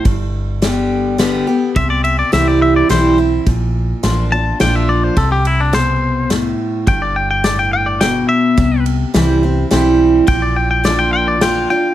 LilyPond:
<<
  \new Staff \with { instrumentName = "Clean electric guitar" } { \time 3/4 \key c \major \tempo 4 = 106 r2. | e''16 d''16 e''16 d''16 e''16 d''16 e''16 d''16 c''8 r8 | r4. a''8 g''16 e''16 d''16 c''16 | a'16 g'16 e'16 d'16 c''4 r4 |
g''16 d''16 g''16 g''16 d''16 g''16 g''16 d''16 g''8 e''8~ | e''8 r2 r8 | g''16 d''16 g''16 g''16 d''16 g''16 g''16 d''16 g''8 g''8 | }
  \new Staff \with { instrumentName = "Steel-string acoustic guitar" } { \time 3/4 \key c \major << { r4 <d g b g'>4 <d g b g'>8 <b g'>8 | r4 <e g c' e'>4 <e g c' e'>8 <c' e'>8 | r4 <f bes d' f'>8 <d' f'>8 <f bes d' f'>4 | r2. |
r2. | r4 <e g c' e'>8 <c' e'>8 <e g c' e'>4 | r4 <f bes d' f'>4 <f bes d' f'>8 <d' f'>8 | } \\ { g,2 r4 | c2 r4 | bes,2 r4 | c4 b,4 a,4 |
g,4 a,4 b,4 | c2 r4 | bes,2 r4 | } >> }
  \new Staff \with { instrumentName = "Fingered electric bass" } { \clef bass \time 3/4 \key c \major g,,2. | c,4 c,4 b,,4 | bes,,4 a,,4 bes,,4 | c,2. |
g,,2. | c,4 c,4 b,,4 | bes,,2. | }
  \new DrumStaff \with { instrumentName = "Drums" } \drummode { \time 3/4 <bd cymr>4 <cymr sn>4 <cymr sn>4 | <bd cymr>8 cymr8 <cymr sn>4 <cymr sn>4 | <bd cymr>4 <cymr sn>4 <cymr sn>4 | <bd cymr>8 cymr8 <cymr sn>4 <cymr sn>4 |
<bd cymr>4 <cymr sn>4 <cymr sn>4 | <bd cymr>8 cymr8 <cymr sn>4 <cymr sn>4 | <bd cymr>4 <cymr sn>4 <cymr sn>4 | }
>>